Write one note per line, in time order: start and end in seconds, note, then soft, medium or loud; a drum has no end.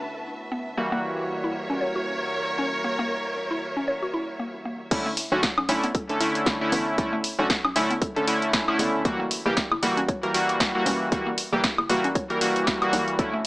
0.00 0.75 D3 medium
0.00 0.75 A3 medium
0.00 0.75 B3 medium
0.00 0.75 C#4 medium
0.00 0.75 E4 medium
0.00 0.77 F#4 medium
0.00 0.78 B4 medium
0.00 4.91 E5 medium
0.00 0.77 A5 medium
0.52 0.59 B3 medium
0.77 4.89 E3 medium
0.77 4.89 G3 medium
0.77 4.89 A#3 medium
0.77 0.82 A#3 medium
0.77 4.89 F#4 medium
0.92 0.98 A#3 loud
1.00 4.91 A#4 medium
1.00 4.91 C#5 medium
1.44 1.50 E4 medium
1.70 1.73 C#4 medium
1.81 1.88 C#5 medium
1.96 1.99 F#4 medium
2.58 2.66 C#4 medium
2.84 2.89 A#3 medium
2.99 3.05 A#3 loud
3.51 3.56 E4 medium
3.77 3.80 C#4 medium
3.88 3.95 C#5 medium
4.03 4.06 F#4 medium
4.14 4.25 E4 medium
4.40 4.44 A#3 medium
4.65 4.77 A#3 medium
4.91 5.08 D3 medium
4.91 5.08 A3 medium
4.91 4.96 A3 medium
4.91 5.09 C#4 medium
4.91 5.09 E4 medium
4.91 kick loud
4.91 closed hi-hat medium
4.91 crash loud
5.06 5.12 A3 loud
5.17 open hi-hat loud
5.32 5.41 B1 loud
5.32 5.40 D3 medium
5.32 5.40 A3 medium
5.32 5.40 C#4 medium
5.32 5.40 F#4 loud
5.43 kick loud
5.43 snare loud
5.43 closed hi-hat medium
5.58 5.67 B1 medium
5.58 5.63 C#4 medium
5.58 high woodblock medium
5.69 5.81 B1 loud
5.69 5.86 D3 medium
5.69 5.86 A3 medium
5.69 5.86 C#4 medium
5.69 5.86 E4 loud
5.69 open hi-hat loud
5.84 5.87 B3 medium
5.84 closed hi-hat medium
5.95 6.02 A4 medium
5.95 kick loud
5.95 closed hi-hat medium
6.09 6.18 D3 medium
6.09 6.18 A3 medium
6.09 6.18 C#4 medium
6.09 6.13 D4 medium
6.09 6.18 A4 medium
6.09 closed hi-hat soft
6.20 6.58 D3 medium
6.20 6.58 A3 medium
6.20 6.58 C#4 medium
6.20 6.58 E4 loud
6.20 open hi-hat loud
6.35 closed hi-hat medium
6.46 kick loud
6.46 snare loud
6.46 closed hi-hat medium
6.61 6.95 D3 medium
6.61 6.95 A3 medium
6.61 6.95 C#4 medium
6.61 6.96 E4 loud
6.72 7.35 A1 loud
6.72 6.80 B3 medium
6.72 open hi-hat medium
6.98 7.15 D3 medium
6.98 7.15 A3 medium
6.98 7.03 A3 medium
6.98 7.15 C#4 medium
6.98 7.15 E4 medium
6.98 kick loud
6.98 closed hi-hat medium
7.13 7.18 A3 loud
7.24 open hi-hat loud
7.39 7.48 B1 loud
7.39 7.47 D3 medium
7.39 7.47 A3 medium
7.39 7.47 C#4 medium
7.39 7.47 F#4 loud
7.50 kick loud
7.50 snare loud
7.50 closed hi-hat medium
7.65 7.74 B1 medium
7.65 7.70 C#4 medium
7.65 high woodblock medium
7.76 7.88 B1 loud
7.76 7.93 D3 medium
7.76 7.93 A3 medium
7.76 7.93 C#4 medium
7.76 7.93 E4 loud
7.76 open hi-hat loud
7.91 7.94 B3 medium
7.91 closed hi-hat medium
8.02 8.09 A4 medium
8.02 kick loud
8.02 closed hi-hat medium
8.16 8.25 D3 medium
8.16 8.25 A3 medium
8.16 8.25 C#4 medium
8.16 8.20 D4 medium
8.16 8.25 A4 medium
8.16 closed hi-hat soft
8.27 8.65 D3 medium
8.27 8.65 A3 medium
8.27 8.65 C#4 medium
8.27 8.65 E4 loud
8.27 open hi-hat loud
8.42 closed hi-hat medium
8.53 kick loud
8.53 snare loud
8.53 closed hi-hat medium
8.68 9.02 D3 medium
8.68 9.02 A3 medium
8.68 9.02 C#4 medium
8.68 9.02 E4 loud
8.68 high woodblock medium
8.79 9.42 F#1 loud
8.79 8.87 B3 medium
8.79 open hi-hat medium
9.05 9.22 E3 medium
9.05 9.22 G3 medium
9.05 9.22 A#3 medium
9.05 9.10 A#3 medium
9.05 9.22 F#4 medium
9.05 kick loud
9.05 closed hi-hat medium
9.20 9.25 A#3 loud
9.31 open hi-hat loud
9.46 9.55 F#1 loud
9.46 9.54 E3 medium
9.46 9.54 G3 medium
9.46 9.54 A#3 medium
9.46 9.54 G4 loud
9.57 kick loud
9.57 snare loud
9.57 closed hi-hat medium
9.71 9.81 F#1 medium
9.71 9.77 E4 medium
9.71 high woodblock medium
9.83 9.95 F#1 loud
9.83 10.00 E3 medium
9.83 10.00 G3 medium
9.83 10.00 A#3 medium
9.83 10.00 F#4 loud
9.83 open hi-hat loud
9.97 10.01 C#4 medium
9.97 closed hi-hat medium
10.09 10.16 C#5 medium
10.09 kick loud
10.09 closed hi-hat medium
10.23 10.32 E3 medium
10.23 10.32 G3 medium
10.23 10.32 A#3 medium
10.23 10.27 F#4 medium
10.23 10.32 A#4 medium
10.23 closed hi-hat soft
10.34 10.71 E3 medium
10.34 10.71 G3 medium
10.34 10.71 A#3 medium
10.34 10.71 F#4 loud
10.34 open hi-hat loud
10.49 closed hi-hat medium
10.60 kick loud
10.60 snare loud
10.60 closed hi-hat medium
10.75 11.09 E3 medium
10.75 11.09 G3 medium
10.75 11.09 A#3 medium
10.75 11.09 F#4 loud
10.86 11.49 E1 loud
10.86 10.93 C#4 medium
10.86 open hi-hat loud
11.12 11.29 E3 medium
11.12 11.29 G3 medium
11.12 11.16 A#3 medium
11.12 11.29 A#3 medium
11.12 11.29 F#4 medium
11.12 kick loud
11.12 closed hi-hat medium
11.27 11.32 A#3 loud
11.38 open hi-hat loud
11.52 11.62 F#1 loud
11.52 11.61 E3 medium
11.52 11.61 G3 medium
11.52 11.61 A#3 medium
11.52 11.61 G4 loud
11.64 kick loud
11.64 snare loud
11.64 closed hi-hat medium
11.78 11.88 F#1 medium
11.78 11.84 E4 medium
11.78 high woodblock medium
11.89 12.02 F#1 loud
11.89 12.07 E3 medium
11.89 12.07 G3 medium
11.89 12.07 A#3 medium
11.89 12.07 F#4 loud
11.89 open hi-hat loud
12.04 12.08 C#4 medium
12.04 closed hi-hat soft
12.15 12.23 C#5 medium
12.15 kick loud
12.15 closed hi-hat medium
12.30 12.39 E3 medium
12.30 12.39 G3 medium
12.30 12.39 A#3 medium
12.30 12.33 F#4 medium
12.30 12.39 A#4 medium
12.30 closed hi-hat soft
12.41 12.78 E3 medium
12.41 12.78 G3 medium
12.41 12.78 A#3 medium
12.41 12.78 F#4 loud
12.41 open hi-hat loud
12.56 closed hi-hat soft
12.67 kick loud
12.67 snare loud
12.67 closed hi-hat medium
12.82 13.16 E3 medium
12.82 13.16 G3 medium
12.82 13.16 A#3 medium
12.82 13.16 F#4 loud
12.82 closed hi-hat soft
12.82 high woodblock medium
12.93 13.47 B1 medium
12.93 13.00 A#3 medium
12.93 open hi-hat medium
13.08 closed hi-hat soft
13.19 13.36 D3 medium
13.19 13.36 A3 medium
13.19 13.23 A3 medium
13.19 13.36 C#4 medium
13.19 13.36 E4 medium
13.19 kick loud
13.19 closed hi-hat medium
13.34 13.39 A3 loud